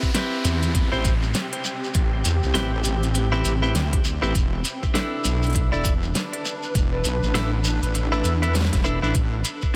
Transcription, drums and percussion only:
0.02 kick, shekere
0.14 snare, closed hi-hat, shekere
0.45 closed hi-hat, shekere
0.63 closed hi-hat, shekere
0.75 kick, closed hi-hat, shekere
0.93 shekere
1.05 kick, closed hi-hat, shekere
1.23 snare, shekere
1.34 snare, closed hi-hat, shekere
1.53 closed hi-hat
1.64 snare, shekere
1.84 shekere
1.94 kick, closed hi-hat, shekere
2.25 closed hi-hat, shekere
2.43 shekere
2.55 snare, closed hi-hat, shekere
2.84 closed hi-hat, shekere
3.03 closed hi-hat, shekere
3.14 closed hi-hat, shekere
3.32 shekere
3.45 closed hi-hat, shekere
3.63 shekere
3.75 snare, closed hi-hat, shekere
3.93 kick, closed hi-hat
4.04 snare, shekere
4.23 shekere
4.35 kick, closed hi-hat, shekere
4.64 closed hi-hat, shekere
4.83 kick, shekere
4.95 snare, closed hi-hat, shekere
5.24 closed hi-hat, shekere
5.43 closed hi-hat, shekere
5.47 closed hi-hat
5.50 closed hi-hat
5.53 kick, closed hi-hat, shekere
5.56 closed hi-hat
5.73 shekere
5.84 kick, closed hi-hat, shekere
6.03 snare, shekere
6.15 snare, closed hi-hat, shekere
6.33 closed hi-hat
6.45 snare, shekere
6.63 shekere
6.75 kick, closed hi-hat, shekere
7.04 closed hi-hat, shekere
7.23 shekere
7.35 snare, closed hi-hat, shekere
7.64 shekere
7.82 closed hi-hat, shekere
7.94 closed hi-hat, shekere
8.13 shekere
8.24 snare, closed hi-hat, shekere
8.42 closed hi-hat, shekere
8.54 snare, closed hi-hat, shekere
8.61 snare
8.65 snare
8.73 kick, snare, closed hi-hat, shekere
8.75 snare
8.81 snare, shekere
8.85 snare
9.04 shekere
9.14 kick, closed hi-hat, shekere
9.44 closed hi-hat, shekere
9.62 kick, shekere

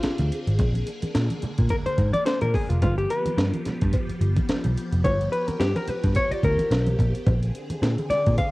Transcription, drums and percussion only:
0.03 snare, closed hi-hat, muted conga
0.18 closed hi-hat, high conga
0.32 closed hi-hat
0.47 closed hi-hat
0.59 kick, closed hi-hat, muted conga, low conga
0.73 closed hi-hat, high conga
0.87 closed hi-hat, muted conga
1.02 closed hi-hat, high conga
1.15 snare, closed hi-hat, muted conga
1.30 closed hi-hat, high conga
1.42 closed hi-hat, low conga
1.58 kick, closed hi-hat
1.69 kick, closed hi-hat, muted conga
1.86 closed hi-hat
1.98 kick, closed hi-hat
2.13 closed hi-hat, high conga
2.26 snare, closed hi-hat
2.41 closed hi-hat, high conga
2.54 kick, open hi-hat, muted conga
2.70 closed hi-hat
2.82 kick, closed hi-hat, cowbell, low conga
2.98 closed hi-hat
3.10 closed hi-hat
3.26 closed hi-hat, high conga
3.38 snare, closed hi-hat, cowbell
3.53 closed hi-hat, high conga
3.65 snare, closed hi-hat, low conga
3.81 kick, closed hi-hat
3.93 kick, closed hi-hat, cowbell
4.09 closed hi-hat
4.21 closed hi-hat
4.36 kick, closed hi-hat, high conga
4.49 snare, closed hi-hat, cowbell, muted conga
4.64 closed hi-hat, high conga
4.77 closed hi-hat
4.92 closed hi-hat
5.05 kick, closed hi-hat, cowbell, muted conga, low conga
5.21 closed hi-hat
5.33 closed hi-hat, muted conga
5.48 closed hi-hat, high conga
5.60 snare, closed hi-hat, cowbell, muted conga
5.76 closed hi-hat, high conga
5.88 closed hi-hat, low conga
6.04 kick, closed hi-hat
6.15 kick, closed hi-hat, cowbell
6.32 closed hi-hat
6.43 kick, closed hi-hat
6.58 closed hi-hat, high conga
6.71 snare, closed hi-hat, cowbell
6.86 closed hi-hat, high conga
6.99 kick, closed hi-hat
7.15 closed hi-hat
7.26 kick, closed hi-hat, cowbell, muted conga, low conga
7.43 closed hi-hat
7.55 closed hi-hat
7.70 closed hi-hat, high conga
7.83 snare, closed hi-hat, cowbell, muted conga
7.98 closed hi-hat, high conga
8.10 snare, closed hi-hat, low conga
8.26 kick, closed hi-hat
8.38 kick, closed hi-hat, cowbell

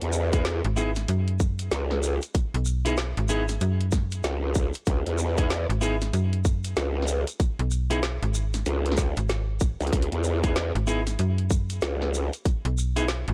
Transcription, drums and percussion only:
0.01 closed hi-hat
0.13 shekere
0.33 kick, closed hi-hat, shekere
0.45 snare, closed hi-hat, shekere
0.64 closed hi-hat
0.77 shekere
0.95 snare, closed hi-hat, shekere
1.08 closed hi-hat, shekere
1.28 closed hi-hat
1.40 kick, shekere
1.59 closed hi-hat, shekere
1.71 snare, closed hi-hat, shekere
1.91 snare
2.03 shekere
2.22 closed hi-hat, shekere
2.35 kick, closed hi-hat, shekere
2.54 closed hi-hat
2.65 shekere
2.86 closed hi-hat, shekere
2.97 snare, closed hi-hat, shekere
3.17 closed hi-hat
3.29 shekere
3.48 snare, closed hi-hat, shekere
3.61 closed hi-hat, shekere
3.81 closed hi-hat
3.92 kick, snare, shekere
4.11 closed hi-hat, shekere
4.24 snare, closed hi-hat, shekere
4.55 kick, shekere
4.73 closed hi-hat, shekere
4.86 kick, closed hi-hat, shekere
5.06 closed hi-hat
5.18 shekere
5.37 kick, closed hi-hat, shekere
5.50 snare, closed hi-hat, shekere
5.70 closed hi-hat
5.82 shekere
6.01 snare, closed hi-hat, shekere
6.13 closed hi-hat, shekere
6.33 closed hi-hat
6.45 kick, shekere
6.64 closed hi-hat, shekere
6.76 snare, closed hi-hat, shekere
7.02 snare
7.07 shekere
7.27 closed hi-hat, shekere
7.40 kick, closed hi-hat, shekere
7.59 closed hi-hat
7.71 shekere
7.91 closed hi-hat, shekere
8.03 snare, closed hi-hat, shekere
8.23 closed hi-hat
8.34 shekere
8.54 snare, closed hi-hat, shekere
8.66 closed hi-hat, shekere
8.86 closed hi-hat
8.92 snare
8.97 kick, snare, shekere
9.17 closed hi-hat, shekere
9.29 snare, closed hi-hat, shekere
9.60 kick, shekere
9.81 closed hi-hat, shekere
9.87 closed hi-hat
9.93 kick, closed hi-hat, shekere
10.02 closed hi-hat
10.12 closed hi-hat
10.24 shekere
10.44 kick, closed hi-hat, shekere
10.56 snare, closed hi-hat, shekere
10.76 closed hi-hat
10.88 shekere
11.07 snare, closed hi-hat, shekere
11.19 closed hi-hat, shekere
11.38 closed hi-hat
11.51 kick, shekere
11.70 closed hi-hat, shekere
11.81 snare, closed hi-hat, shekere
12.02 snare
12.14 shekere
12.33 closed hi-hat, shekere
12.45 kick, closed hi-hat, shekere
12.65 closed hi-hat
12.78 shekere
12.97 closed hi-hat, shekere
13.08 snare, closed hi-hat, shekere
13.28 closed hi-hat

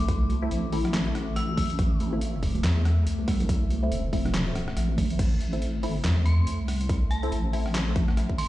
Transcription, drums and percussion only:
0.09 kick, closed hi-hat
0.29 closed hi-hat, high conga
0.51 closed hi-hat
0.72 open hi-hat
0.84 cross-stick, closed hi-hat, muted conga, high conga, low conga
0.94 snare, clap, closed hi-hat
1.05 muted conga
1.15 cross-stick, closed hi-hat
1.36 cross-stick, closed hi-hat
1.49 high conga
1.57 kick, open hi-hat, low conga
1.70 closed hi-hat, muted conga
1.79 kick, closed hi-hat
2.00 closed hi-hat, high conga
2.21 closed hi-hat
2.43 kick, open hi-hat
2.55 closed hi-hat, muted conga, high conga, low conga
2.64 snare, clap, closed hi-hat
2.85 cross-stick, closed hi-hat, muted conga
3.07 closed hi-hat
3.19 high conga
3.28 kick, cross-stick, open hi-hat
3.40 closed hi-hat, low conga
3.49 kick, closed hi-hat
3.70 closed hi-hat, high conga
3.92 closed hi-hat
4.13 kick, open hi-hat
4.25 cross-stick, closed hi-hat, muted conga, high conga, low conga
4.34 snare, clap, closed hi-hat
4.47 muted conga
4.55 cross-stick, closed hi-hat, muted conga
4.68 cross-stick
4.77 cross-stick, closed hi-hat
4.89 high conga
4.98 kick, open hi-hat, low conga
5.10 closed hi-hat, muted conga
5.19 kick, closed hi-hat, crash
5.41 closed hi-hat
5.53 closed hi-hat
5.62 closed hi-hat
5.83 open hi-hat
6.04 snare, clap, closed hi-hat
6.26 closed hi-hat
6.47 closed hi-hat
6.68 cross-stick, open hi-hat
6.81 closed hi-hat
6.89 kick, closed hi-hat
7.11 closed hi-hat
7.23 closed hi-hat
7.32 closed hi-hat
7.53 open hi-hat
7.66 cross-stick
7.75 snare, clap, closed hi-hat
7.96 kick, closed hi-hat
8.08 cross-stick
8.17 cross-stick, closed hi-hat
8.29 kick
8.38 open hi-hat

